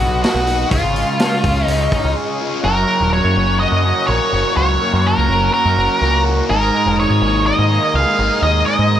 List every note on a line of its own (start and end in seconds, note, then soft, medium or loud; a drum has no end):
0.00 0.22 B1 medium
0.00 0.71 F#3 medium
0.00 0.71 B3 medium
0.00 0.22 F#4 medium
0.00 0.68 B4 medium
0.00 0.68 D#5 medium
0.00 0.69 F#5 medium
0.00 0.69 D#6 medium
0.23 0.71 F#4 medium
0.23 snare loud
0.23 open hi-hat medium
0.34 0.63 B1 medium
0.47 0.71 D#4 medium
0.47 open hi-hat soft
0.69 0.81 C#2 medium
0.69 1.92 C#3 medium
0.69 1.66 F4 medium
0.69 2.62 G#4 medium
0.69 2.61 C#5 medium
0.69 2.61 F5 medium
0.69 2.61 C#6 medium
0.69 kick loud
0.69 open hi-hat medium
0.83 1.02 G#1 medium
0.96 1.19 G#3 medium
0.96 open hi-hat medium
1.19 1.67 G#3 medium
1.19 snare loud
1.19 open hi-hat medium
1.44 1.63 C#2 medium
1.44 1.92 C#4 medium
1.44 kick medium
1.44 open hi-hat soft
1.66 1.86 C#2 medium
1.66 2.64 G#3 medium
1.66 2.12 D#4 medium
1.66 open hi-hat medium
1.92 2.65 C#4 medium
1.92 kick medium
1.92 open hi-hat soft
2.04 2.14 C#2 medium
2.16 2.64 G#4 medium
2.41 2.64 F4 medium
2.62 2.83 F#1 medium
2.62 3.85 F#2 medium
2.62 6.46 A#4 medium
2.62 3.09 A#4 medium
2.62 6.45 C#5 medium
2.62 6.45 F#5 medium
2.62 6.45 C#6 medium
2.88 4.08 A#3 medium
3.00 3.20 D#1 medium
3.13 4.33 F#3 medium
3.13 3.59 C#5 medium
3.24 3.34 F#2 medium
3.36 3.65 F#1 loud
3.36 3.84 C#4 medium
3.60 4.33 F#4 medium
3.60 4.07 D#5 loud
3.72 3.92 F#2 medium
3.85 5.05 C#4 medium
4.07 4.18 A#1 loud
4.07 4.81 A#3 medium
4.07 4.56 C#5 medium
4.33 4.42 F#1 loud
4.33 5.51 F#4 medium
4.57 4.76 C#2 medium
4.57 5.78 F#2 medium
4.57 5.07 C#5 loud
4.81 6.00 A#3 medium
4.93 5.13 F#2 medium
5.05 6.26 F#3 medium
5.05 5.52 A#4 medium
5.18 5.27 C#2 medium
5.28 5.49 F#1 medium
5.28 5.76 C#4 medium
5.53 6.23 F#4 medium
5.53 6.22 A#4 medium
5.65 5.75 F#2 medium
5.77 5.87 F#1 loud
5.77 6.50 C#4 medium
6.01 6.40 C#2 medium
6.01 6.53 A#3 medium
6.25 6.49 F#4 medium
6.49 6.69 G#1 loud
6.49 7.71 G#2 medium
6.49 9.00 A#4 medium
6.49 6.95 A#4 medium
6.49 9.00 D#5 medium
6.49 9.00 G#5 medium
6.49 9.00 D#6 medium
6.74 7.94 G#3 medium
6.86 7.05 F1 medium
6.98 8.19 D#3 medium
6.98 7.44 C#5 medium
7.10 7.20 G#2 medium
7.21 7.51 G#1 medium
7.21 7.69 A#3 medium
7.46 8.17 D#4 medium
7.46 7.91 D#5 loud
7.59 7.78 G#2 medium
7.71 8.91 A#3 medium
7.94 8.04 C#2 medium
7.94 8.67 G#3 medium
7.94 8.40 F5 medium
8.18 8.29 G#1 loud
8.18 9.00 D#4 medium
8.42 8.62 D#2 medium
8.42 9.00 G#2 medium
8.42 8.65 D#5 loud
8.66 9.00 G#3 medium
8.66 9.00 D#5 medium
8.79 8.98 G#2 medium
8.91 9.00 D#3 medium